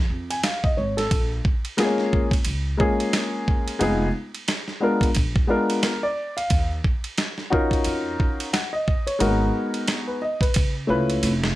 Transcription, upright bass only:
0, 0, Header, 1, 2, 480
1, 0, Start_track
1, 0, Tempo, 674157
1, 792, Time_signature, 4, 2, 24, 8
1, 8226, End_track
2, 0, Start_track
2, 0, Title_t, "Upright bass"
2, 0, Program_c, 0, 32
2, 69, Note_on_c, 0, 41, 88
2, 269, Note_off_c, 0, 41, 0
2, 455, Note_on_c, 0, 41, 75
2, 536, Note_off_c, 0, 41, 0
2, 553, Note_on_c, 0, 32, 81
2, 751, Note_off_c, 0, 32, 0
2, 792, Note_on_c, 0, 34, 99
2, 990, Note_off_c, 0, 34, 0
2, 1754, Note_on_c, 0, 37, 77
2, 1951, Note_off_c, 0, 37, 0
2, 2713, Note_on_c, 0, 29, 114
2, 2911, Note_off_c, 0, 29, 0
2, 3679, Note_on_c, 0, 34, 84
2, 3874, Note_off_c, 0, 34, 0
2, 4633, Note_on_c, 0, 39, 111
2, 4831, Note_off_c, 0, 39, 0
2, 5596, Note_on_c, 0, 41, 78
2, 5793, Note_off_c, 0, 41, 0
2, 6556, Note_on_c, 0, 32, 111
2, 6752, Note_off_c, 0, 32, 0
2, 7521, Note_on_c, 0, 49, 78
2, 7754, Note_on_c, 0, 37, 90
2, 7764, Note_off_c, 0, 49, 0
2, 7951, Note_off_c, 0, 37, 0
2, 7994, Note_on_c, 0, 29, 106
2, 8191, Note_off_c, 0, 29, 0
2, 8226, End_track
0, 0, End_of_file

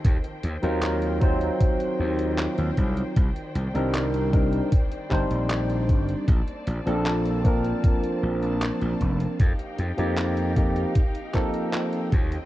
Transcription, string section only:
0, 0, Header, 1, 2, 480
1, 0, Start_track
1, 0, Tempo, 779221
1, 28, Time_signature, 4, 2, 24, 8
1, 7671, End_track
2, 0, Start_track
2, 0, Title_t, "String section"
2, 0, Program_c, 0, 48
2, 0, Note_on_c, 0, 51, 74
2, 0, Note_on_c, 0, 72, 68
2, 0, Note_on_c, 0, 79, 85
2, 1948, Note_on_c, 0, 74, 72
2, 3843, Note_off_c, 0, 51, 0
2, 3844, Note_off_c, 0, 72, 0
2, 3844, Note_off_c, 0, 79, 0
2, 3869, Note_on_c, 0, 60, 76
2, 3869, Note_on_c, 0, 81, 90
2, 3870, Note_on_c, 0, 58, 72
2, 5764, Note_off_c, 0, 74, 0
2, 5770, Note_off_c, 0, 58, 0
2, 5770, Note_off_c, 0, 60, 0
2, 5770, Note_off_c, 0, 81, 0
2, 5788, Note_on_c, 0, 77, 71
2, 5789, Note_on_c, 0, 67, 69
2, 5789, Note_on_c, 0, 79, 89
2, 5790, Note_on_c, 0, 63, 81
2, 7452, Note_off_c, 0, 63, 0
2, 7452, Note_off_c, 0, 67, 0
2, 7452, Note_off_c, 0, 77, 0
2, 7467, Note_on_c, 0, 75, 71
2, 7468, Note_on_c, 0, 54, 70
2, 7468, Note_on_c, 0, 60, 78
2, 7671, Note_off_c, 0, 54, 0
2, 7671, Note_off_c, 0, 60, 0
2, 7671, Note_off_c, 0, 75, 0
2, 7671, Note_off_c, 0, 79, 0
2, 7671, End_track
0, 0, End_of_file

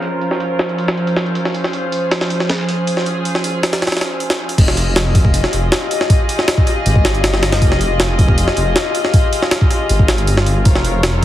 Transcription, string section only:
0, 0, Header, 1, 2, 480
1, 0, Start_track
1, 0, Key_signature, -4, "minor"
1, 0, Tempo, 379747
1, 30, Time_signature, 4, 2, 24, 8
1, 14217, End_track
2, 0, Start_track
2, 0, Title_t, "String section"
2, 0, Program_c, 0, 48
2, 0, Note_on_c, 0, 53, 73
2, 0, Note_on_c, 0, 61, 69
2, 0, Note_on_c, 0, 65, 68
2, 0, Note_on_c, 0, 70, 68
2, 0, Note_on_c, 0, 72, 80
2, 1911, Note_off_c, 0, 70, 0
2, 1950, Note_on_c, 0, 68, 72
2, 5740, Note_off_c, 0, 65, 0
2, 5740, Note_off_c, 0, 72, 0
2, 5741, Note_off_c, 0, 53, 0
2, 5741, Note_off_c, 0, 61, 0
2, 5752, Note_off_c, 0, 68, 0
2, 5789, Note_on_c, 0, 75, 88
2, 5790, Note_on_c, 0, 67, 74
2, 5790, Note_on_c, 0, 68, 72
2, 5792, Note_on_c, 0, 65, 83
2, 13420, Note_off_c, 0, 67, 0
2, 13420, Note_off_c, 0, 68, 0
2, 13420, Note_off_c, 0, 75, 0
2, 13473, Note_on_c, 0, 70, 75
2, 13473, Note_on_c, 0, 72, 74
2, 13473, Note_on_c, 0, 73, 89
2, 14217, Note_off_c, 0, 65, 0
2, 14217, Note_off_c, 0, 70, 0
2, 14217, Note_off_c, 0, 72, 0
2, 14217, Note_off_c, 0, 73, 0
2, 14217, End_track
0, 0, End_of_file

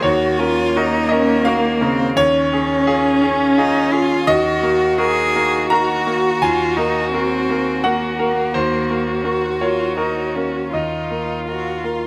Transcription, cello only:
0, 0, Header, 1, 2, 480
1, 0, Start_track
1, 0, Tempo, 708383
1, 26, Time_signature, 3, 2, 24, 8
1, 6265, Tempo, 739827
1, 8097, End_track
2, 0, Start_track
2, 0, Title_t, "Cello"
2, 0, Program_c, 0, 42
2, 32, Note_on_c, 0, 66, 76
2, 274, Note_on_c, 0, 65, 86
2, 284, Note_off_c, 0, 66, 0
2, 522, Note_on_c, 0, 63, 77
2, 532, Note_off_c, 0, 65, 0
2, 762, Note_on_c, 0, 61, 84
2, 772, Note_off_c, 0, 63, 0
2, 999, Note_on_c, 0, 58, 75
2, 1009, Note_off_c, 0, 61, 0
2, 1235, Note_on_c, 0, 60, 78
2, 1245, Note_off_c, 0, 58, 0
2, 1466, Note_off_c, 0, 60, 0
2, 1470, Note_on_c, 0, 61, 82
2, 2430, Note_on_c, 0, 63, 86
2, 2440, Note_off_c, 0, 61, 0
2, 2663, Note_on_c, 0, 65, 84
2, 2674, Note_off_c, 0, 63, 0
2, 2908, Note_on_c, 0, 66, 85
2, 2918, Note_off_c, 0, 65, 0
2, 3379, Note_on_c, 0, 68, 87
2, 3389, Note_off_c, 0, 66, 0
2, 3859, Note_off_c, 0, 68, 0
2, 3863, Note_on_c, 0, 66, 84
2, 4351, Note_on_c, 0, 65, 79
2, 4362, Note_off_c, 0, 66, 0
2, 4585, Note_on_c, 0, 63, 68
2, 4595, Note_off_c, 0, 65, 0
2, 4822, Note_off_c, 0, 63, 0
2, 4826, Note_on_c, 0, 60, 76
2, 5316, Note_on_c, 0, 58, 63
2, 5326, Note_off_c, 0, 60, 0
2, 6275, Note_on_c, 0, 66, 52
2, 6284, Note_off_c, 0, 58, 0
2, 6508, Note_on_c, 0, 65, 57
2, 6518, Note_off_c, 0, 66, 0
2, 6734, Note_off_c, 0, 65, 0
2, 6738, Note_on_c, 0, 63, 53
2, 6985, Note_on_c, 0, 61, 46
2, 6995, Note_off_c, 0, 63, 0
2, 7228, Note_on_c, 0, 63, 40
2, 7237, Note_off_c, 0, 61, 0
2, 7660, Note_off_c, 0, 63, 0
2, 7717, Note_on_c, 0, 66, 50
2, 7959, Note_on_c, 0, 65, 41
2, 7969, Note_off_c, 0, 66, 0
2, 8097, Note_off_c, 0, 65, 0
2, 8097, End_track
0, 0, End_of_file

